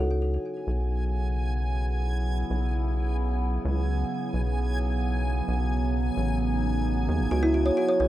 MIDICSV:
0, 0, Header, 1, 5, 480
1, 0, Start_track
1, 0, Tempo, 458015
1, 1904, Time_signature, 4, 2, 24, 8
1, 8468, End_track
2, 0, Start_track
2, 0, Title_t, "Synth texture"
2, 0, Program_c, 0, 99
2, 0, Note_on_c, 0, 80, 85
2, 8468, Note_off_c, 0, 80, 0
2, 8468, End_track
3, 0, Start_track
3, 0, Title_t, "Kalimba"
3, 0, Program_c, 1, 108
3, 7664, Note_on_c, 1, 66, 79
3, 7721, Note_off_c, 1, 66, 0
3, 7784, Note_on_c, 1, 64, 96
3, 7880, Note_off_c, 1, 64, 0
3, 7904, Note_on_c, 1, 66, 70
3, 8018, Note_off_c, 1, 66, 0
3, 8024, Note_on_c, 1, 73, 71
3, 8120, Note_off_c, 1, 73, 0
3, 8144, Note_on_c, 1, 66, 77
3, 8240, Note_off_c, 1, 66, 0
3, 8264, Note_on_c, 1, 73, 75
3, 8378, Note_off_c, 1, 73, 0
3, 8384, Note_on_c, 1, 54, 70
3, 8468, Note_off_c, 1, 54, 0
3, 8468, End_track
4, 0, Start_track
4, 0, Title_t, "Ambient pad"
4, 0, Program_c, 2, 92
4, 0, Note_on_c, 2, 49, 77
4, 219, Note_on_c, 2, 54, 76
4, 345, Note_on_c, 2, 59, 90
4, 1712, Note_on_c, 2, 64, 74
4, 5744, Note_off_c, 2, 64, 0
4, 6608, Note_on_c, 2, 63, 79
4, 7664, Note_off_c, 2, 63, 0
4, 8468, Note_off_c, 2, 49, 0
4, 8468, Note_off_c, 2, 54, 0
4, 8468, Note_off_c, 2, 59, 0
4, 8468, End_track
5, 0, Start_track
5, 0, Title_t, "Analog synth bass"
5, 0, Program_c, 3, 38
5, 0, Note_on_c, 3, 37, 97
5, 399, Note_off_c, 3, 37, 0
5, 704, Note_on_c, 3, 35, 84
5, 2559, Note_off_c, 3, 35, 0
5, 2624, Note_on_c, 3, 35, 86
5, 3759, Note_off_c, 3, 35, 0
5, 3824, Note_on_c, 3, 37, 101
5, 4239, Note_off_c, 3, 37, 0
5, 4544, Note_on_c, 3, 35, 81
5, 5679, Note_off_c, 3, 35, 0
5, 5744, Note_on_c, 3, 35, 81
5, 6399, Note_off_c, 3, 35, 0
5, 6464, Note_on_c, 3, 33, 80
5, 7418, Note_off_c, 3, 33, 0
5, 7424, Note_on_c, 3, 39, 82
5, 7544, Note_on_c, 3, 33, 83
5, 7560, Note_off_c, 3, 39, 0
5, 7624, Note_off_c, 3, 33, 0
5, 7664, Note_on_c, 3, 37, 95
5, 8079, Note_off_c, 3, 37, 0
5, 8384, Note_on_c, 3, 35, 81
5, 8468, Note_off_c, 3, 35, 0
5, 8468, End_track
0, 0, End_of_file